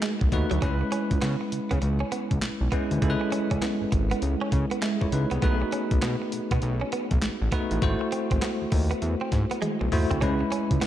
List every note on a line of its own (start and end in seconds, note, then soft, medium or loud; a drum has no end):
0.00 0.15 G#3 medium
0.00 0.32 A3 medium
0.00 0.33 D#4 medium
0.00 0.33 F#4 medium
0.00 0.64 A#4 medium
0.00 0.33 B4 medium
0.00 snare loud
0.00 clap loud
0.00 closed hi-hat medium
0.21 0.29 B1 medium
0.21 muted clean electric guitar stroke soft
0.21 kick medium
0.32 0.46 D#2 medium
0.32 0.59 A3 medium
0.32 0.59 D#4 medium
0.32 0.60 F#4 medium
0.32 0.60 B4 medium
0.32 kick medium
0.32 closed hi-hat medium
0.51 0.59 D2 medium
0.51 0.59 F#3 medium
0.51 closed hi-hat medium
0.62 0.84 C#2 loud
0.62 1.69 G#3 medium
0.62 0.75 C#4 medium
0.62 1.69 C#4 medium
0.62 1.70 E4 medium
0.62 1.70 B4 medium
0.62 kick loud
0.62 closed hi-hat medium
0.81 muted clean electric guitar stroke soft
0.92 1.05 C#4 medium
0.92 closed hi-hat medium
1.11 1.19 C#2 medium
1.11 kick loud
1.11 closed hi-hat medium
1.22 1.36 C#3 loud
1.22 1.35 B3 medium
1.22 snare loud
1.22 clap medium
1.22 closed hi-hat medium
1.41 muted clean electric guitar stroke soft
1.52 1.60 C#3 soft
1.52 closed hi-hat medium
1.71 1.79 C#3 medium
1.71 1.78 B3 medium
1.71 kick medium
1.71 closed hi-hat medium
1.82 2.04 C#2 loud
1.82 muted clean electric guitar stroke soft
1.82 closed hi-hat medium
2.00 2.08 C#4 medium
2.12 2.25 B3 medium
2.12 closed hi-hat medium
2.31 2.39 C#2 medium
2.31 kick medium
2.31 closed hi-hat medium
2.42 2.50 B1 soft
2.42 snare loud
2.42 clap loud
2.42 closed hi-hat medium
2.61 2.69 B1 medium
2.72 2.99 G#3 medium
2.72 2.85 B3 medium
2.72 2.99 C#4 medium
2.72 2.99 E4 medium
2.72 3.00 B4 medium
2.72 kick medium
2.72 closed hi-hat medium
2.91 2.99 D2 medium
2.91 closed hi-hat medium
3.02 3.16 C#2 loud
3.02 4.09 G#3 medium
3.02 4.10 C#4 medium
3.02 4.10 E4 medium
3.02 3.11 A4 medium
3.02 kick loud
3.02 closed hi-hat medium
3.10 4.13 B4 medium
3.21 muted clean electric guitar stroke soft
3.32 3.45 C#4 medium
3.32 closed hi-hat medium
3.51 3.59 C#2 loud
3.51 3.59 C#4 medium
3.51 kick medium
3.51 closed hi-hat medium
3.62 3.75 B3 medium
3.62 snare loud
3.62 clap medium
3.62 closed hi-hat medium
3.81 3.86 G#1 soft
3.92 4.14 G#1 loud
3.92 muted clean electric guitar stroke soft
3.92 kick loud
3.92 closed hi-hat medium
4.11 4.19 B3 medium
4.11 closed hi-hat soft
4.22 4.36 C#2 loud
4.22 closed hi-hat medium
4.41 4.49 C#4 medium
4.52 4.66 C#3 medium
4.52 muted clean electric guitar stroke soft
4.52 kick medium
4.52 closed hi-hat medium
4.71 4.79 B3 medium
4.71 closed hi-hat medium
4.82 4.95 G#3 medium
4.82 5.01 G#4 medium
4.82 5.01 E5 medium
4.82 snare loud
4.82 clap loud
4.82 closed hi-hat medium
5.01 5.09 C#2 medium
5.01 5.12 E4 medium
5.01 5.12 C#5 medium
5.01 muted clean electric guitar stroke soft
5.01 kick medium
5.12 5.26 C#2 medium
5.12 5.31 D#4 medium
5.12 5.31 B4 medium
5.12 closed hi-hat medium
5.31 5.39 C2 loud
5.31 5.39 B3 medium
5.31 5.61 B3 soft
5.31 5.60 G#4 medium
5.31 closed hi-hat medium
5.42 5.64 B1 loud
5.42 6.49 A3 medium
5.42 5.55 B3 medium
5.42 6.50 D#4 medium
5.42 6.50 F#4 medium
5.42 6.50 B4 loud
5.42 kick loud
5.42 closed hi-hat medium
5.62 muted clean electric guitar stroke soft
5.72 5.85 C#4 medium
5.72 closed hi-hat medium
5.91 5.99 B1 medium
5.91 kick loud
5.91 closed hi-hat medium
6.02 6.16 B2 loud
6.02 6.15 B3 medium
6.02 snare loud
6.02 clap medium
6.02 closed hi-hat medium
6.22 muted clean electric guitar stroke soft
6.32 6.40 B2 soft
6.32 closed hi-hat medium
6.51 6.59 B2 loud
6.51 6.59 B3 medium
6.51 kick medium
6.51 closed hi-hat soft
6.62 6.84 B1 loud
6.62 muted clean electric guitar stroke soft
6.62 closed hi-hat medium
6.81 6.89 C#4 medium
6.92 7.05 B3 medium
6.92 closed hi-hat medium
7.11 7.19 B1 medium
7.11 kick medium
7.11 closed hi-hat medium
7.22 7.30 A1 soft
7.22 snare loud
7.22 clap loud
7.22 closed hi-hat medium
7.42 7.49 A1 medium
7.52 7.79 A3 medium
7.52 7.65 B3 medium
7.52 7.79 D#4 medium
7.52 7.80 F#4 medium
7.52 7.80 B4 medium
7.52 kick medium
7.52 closed hi-hat medium
7.71 7.79 A1 medium
7.71 closed hi-hat medium
7.82 7.96 G#1 loud
7.82 8.89 A3 medium
7.82 8.89 E4 medium
7.82 8.90 F#4 medium
7.82 8.90 C5 loud
7.82 kick loud
7.82 closed hi-hat medium
8.01 muted clean electric guitar stroke soft
8.12 8.25 C4 medium
8.12 closed hi-hat medium
8.31 8.39 G#1 loud
8.31 8.39 C4 medium
8.31 kick loud
8.31 closed hi-hat medium
8.42 8.55 B3 medium
8.42 snare loud
8.42 clap medium
8.42 closed hi-hat medium
8.62 8.66 D#2 soft
8.72 8.94 D#2 medium
8.72 muted clean electric guitar stroke soft
8.72 kick loud
8.72 open hi-hat medium
8.91 8.98 B3 medium
8.91 closed hi-hat medium
9.02 9.16 E2 loud
9.02 closed hi-hat medium
9.21 9.29 C4 medium
9.32 9.46 G#2 loud
9.32 muted clean electric guitar stroke soft
9.32 kick medium
9.32 snare medium
9.32 closed hi-hat medium
9.51 9.59 B3 medium
9.51 closed hi-hat medium
9.62 9.75 G#3 medium
9.62 closed hi-hat medium
9.62 high tom medium
9.81 9.89 B1 medium
9.81 muted clean electric guitar stroke soft
9.81 mid tom medium
9.92 10.06 D#2 medium
9.92 10.19 A3 medium
9.92 10.19 E4 medium
9.92 10.20 F#4 medium
9.92 10.20 C5 medium
9.92 mid tom medium
9.92 open hi-hat medium
10.11 10.19 D2 loud
10.11 10.18 C4 medium
10.11 closed hi-hat medium
10.11 floor tom medium
10.21 10.43 C#2 loud
10.21 10.87 G#3 medium
10.21 10.34 C#4 medium
10.21 10.87 C#4 medium
10.21 10.87 E4 medium
10.21 10.87 B4 medium
10.21 kick loud
10.21 closed hi-hat medium
10.41 muted clean electric guitar stroke soft
10.52 10.65 C#4 medium
10.52 closed hi-hat medium
10.71 10.79 C#2 medium
10.71 kick medium
10.71 closed hi-hat medium
10.81 10.87 C#3 soft
10.81 10.87 B3 medium
10.81 snare loud
10.81 clap medium
10.81 closed hi-hat medium